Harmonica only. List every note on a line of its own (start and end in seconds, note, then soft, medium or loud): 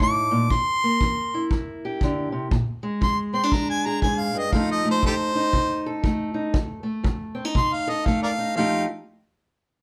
0.03 0.54 D6 loud
0.52 1.49 C6 loud
3.03 3.19 C6 medium
3.34 3.54 C6 medium
3.53 3.69 A#5 medium
3.70 3.87 G#5 medium
3.86 4.02 A#5 medium
4.02 4.22 G#5 medium
4.20 4.40 F5 medium
4.38 4.54 D#5 medium
4.53 4.69 F5 medium
4.71 4.87 D#5 medium
4.91 5.05 C5 medium
5.06 5.15 G4 medium
5.06 5.15 A4 medium
5.06 6.03 C5 loud
7.57 7.75 C6 loud
7.74 7.91 F5 medium
7.89 8.07 D#5 medium
8.06 8.22 F5 medium
8.23 8.29 A#4 medium
8.23 8.31 D5 medium
8.23 8.55 F5 medium
8.56 8.85 F5 medium